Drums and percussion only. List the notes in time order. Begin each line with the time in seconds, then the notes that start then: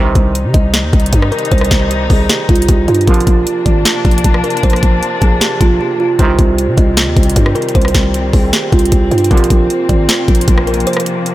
0.15 kick, closed hi-hat
0.35 closed hi-hat
0.54 kick, closed hi-hat
0.74 snare, closed hi-hat
0.93 kick, closed hi-hat
1.00 closed hi-hat
1.06 closed hi-hat
1.13 kick, closed hi-hat
1.22 cross-stick
1.32 closed hi-hat
1.39 closed hi-hat
1.45 closed hi-hat
1.51 kick, closed hi-hat
1.58 cross-stick, closed hi-hat
1.65 closed hi-hat
1.71 kick, snare, closed hi-hat
1.91 closed hi-hat
2.10 kick, open hi-hat
2.29 snare, closed hi-hat
2.49 kick, closed hi-hat
2.56 closed hi-hat
2.62 closed hi-hat
2.69 kick, closed hi-hat
2.88 closed hi-hat
2.95 closed hi-hat
3.01 closed hi-hat
3.08 kick, closed hi-hat
3.14 closed hi-hat
3.20 closed hi-hat
3.27 kick, closed hi-hat
3.47 closed hi-hat
3.66 kick, closed hi-hat
3.85 snare, closed hi-hat
4.05 kick, closed hi-hat
4.11 closed hi-hat
4.18 closed hi-hat
4.24 kick, closed hi-hat
4.34 cross-stick
4.44 closed hi-hat
4.50 closed hi-hat
4.57 closed hi-hat
4.63 kick, closed hi-hat
4.70 cross-stick, closed hi-hat
4.76 closed hi-hat
4.83 kick, closed hi-hat
5.03 closed hi-hat
5.22 kick, closed hi-hat
5.41 snare, closed hi-hat
5.61 kick, closed hi-hat
6.19 kick, closed hi-hat
6.39 kick, closed hi-hat
6.58 closed hi-hat
6.78 kick, closed hi-hat
6.97 snare, closed hi-hat
7.17 kick, closed hi-hat
7.23 closed hi-hat
7.30 closed hi-hat
7.36 kick, closed hi-hat
7.46 cross-stick
7.56 closed hi-hat
7.62 closed hi-hat
7.69 closed hi-hat
7.75 kick, closed hi-hat
7.82 cross-stick, closed hi-hat
7.88 closed hi-hat
7.94 kick, snare, closed hi-hat
8.14 closed hi-hat
8.33 kick, open hi-hat
8.53 snare, closed hi-hat
8.72 kick, closed hi-hat
8.79 closed hi-hat
8.86 closed hi-hat
8.92 kick, closed hi-hat
9.11 closed hi-hat
9.18 closed hi-hat
9.24 closed hi-hat
9.31 kick, closed hi-hat
9.37 closed hi-hat
9.44 closed hi-hat
9.50 kick, closed hi-hat
9.70 closed hi-hat
9.89 kick, closed hi-hat
10.09 snare, closed hi-hat
10.28 kick, closed hi-hat
10.35 closed hi-hat
10.41 closed hi-hat
10.48 kick, closed hi-hat
10.58 cross-stick
10.67 closed hi-hat
10.74 closed hi-hat
10.80 closed hi-hat
10.87 closed hi-hat
10.93 cross-stick, closed hi-hat
11.00 closed hi-hat
11.06 closed hi-hat
11.26 closed hi-hat